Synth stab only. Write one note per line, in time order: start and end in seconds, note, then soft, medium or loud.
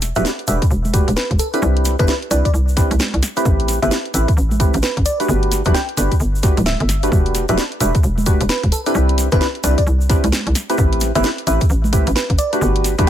0.16 0.31 A3 loud
0.16 0.31 D4 medium
0.16 0.31 F#4 medium
0.16 0.31 G4 medium
0.16 0.31 B4 loud
0.48 0.66 A3 medium
0.48 0.66 D4 medium
0.48 0.66 F#4 medium
0.48 0.66 G4 medium
0.48 0.66 B4 medium
0.94 1.11 A3 medium
0.94 1.11 D4 medium
0.94 1.11 F#4 medium
0.94 1.11 G4 medium
0.94 1.11 B4 medium
1.54 1.96 C4 medium
1.54 1.96 D4 medium
1.54 1.96 E4 medium
1.54 1.96 G4 medium
1.54 1.96 B4 medium
1.99 2.14 C4 medium
1.99 2.14 D4 medium
1.99 2.14 E4 medium
1.99 2.14 G4 medium
1.99 2.14 B4 loud
2.31 2.49 C4 medium
2.31 2.49 D4 medium
2.31 2.49 E4 medium
2.31 2.49 G4 medium
2.31 2.49 B4 medium
2.77 2.95 C4 medium
2.77 2.95 D4 medium
2.77 2.95 E4 medium
2.77 2.95 G4 medium
2.77 2.95 B4 medium
3.37 3.79 A3 medium
3.37 3.79 C4 medium
3.37 3.79 E4 medium
3.37 3.79 G4 medium
3.37 3.79 B4 medium
3.83 3.97 A3 loud
3.83 3.97 C4 medium
3.83 3.97 E4 medium
3.83 3.97 G4 medium
3.83 3.97 B4 loud
4.14 4.32 A3 medium
4.14 4.32 C4 medium
4.14 4.32 E4 medium
4.14 4.32 G4 medium
4.14 4.32 B4 medium
4.60 4.78 A3 medium
4.60 4.78 C4 medium
4.60 4.78 E4 medium
4.60 4.78 G4 medium
4.60 4.78 B4 medium
5.20 5.62 A3 medium
5.20 5.62 D4 medium
5.20 5.62 F#4 medium
5.20 5.62 G4 medium
5.20 5.62 B4 medium
5.66 5.80 A3 loud
5.66 5.80 D4 medium
5.66 5.80 F#4 medium
5.66 5.80 G4 medium
5.66 5.80 B4 loud
5.97 6.15 A3 medium
5.97 6.15 D4 medium
5.97 6.15 F#4 medium
5.97 6.15 G4 medium
5.97 6.15 B4 medium
6.43 6.61 A3 medium
6.43 6.61 D4 medium
6.43 6.61 F#4 medium
6.43 6.61 G4 medium
6.43 6.61 B4 medium
7.03 7.46 A3 medium
7.03 7.46 D4 medium
7.03 7.46 F#4 medium
7.03 7.46 G4 medium
7.03 7.46 B4 medium
7.49 7.64 A3 loud
7.49 7.64 D4 medium
7.49 7.64 F#4 medium
7.49 7.64 G4 medium
7.49 7.64 B4 loud
7.81 7.98 A3 medium
7.81 7.98 D4 medium
7.81 7.98 F#4 medium
7.81 7.98 G4 medium
7.81 7.98 B4 medium
8.26 8.44 A3 medium
8.26 8.44 D4 medium
8.26 8.44 F#4 medium
8.26 8.44 G4 medium
8.26 8.44 B4 medium
8.86 9.29 C4 medium
8.86 9.29 D4 medium
8.86 9.29 E4 medium
8.86 9.29 G4 medium
8.86 9.29 B4 medium
9.32 9.47 C4 loud
9.32 9.47 D4 medium
9.32 9.47 E4 medium
9.32 9.47 G4 medium
9.32 9.47 B4 loud
9.64 9.82 C4 medium
9.64 9.82 D4 medium
9.64 9.82 E4 medium
9.64 9.82 G4 medium
9.64 9.82 B4 medium
10.10 10.27 C4 medium
10.10 10.27 D4 medium
10.10 10.27 E4 medium
10.10 10.27 G4 medium
10.10 10.27 B4 medium
10.70 11.12 A3 medium
10.70 11.12 C4 medium
10.70 11.12 E4 medium
10.70 11.12 G4 medium
10.70 11.12 B4 medium
11.15 11.30 A3 loud
11.15 11.30 C4 medium
11.15 11.30 E4 medium
11.15 11.30 G4 medium
11.15 11.30 B4 loud
11.47 11.65 A3 medium
11.47 11.65 C4 medium
11.47 11.65 E4 medium
11.47 11.65 G4 medium
11.47 11.65 B4 medium
11.93 12.11 A3 medium
11.93 12.11 C4 medium
11.93 12.11 E4 medium
11.93 12.11 G4 medium
11.93 12.11 B4 medium
12.53 12.95 A3 medium
12.53 12.95 D4 medium
12.53 12.95 F#4 medium
12.53 12.95 G4 medium
12.53 12.95 B4 medium
12.99 13.10 A3 loud
12.99 13.10 D4 medium
12.99 13.10 F#4 medium
12.99 13.10 G4 medium
12.99 13.10 B4 loud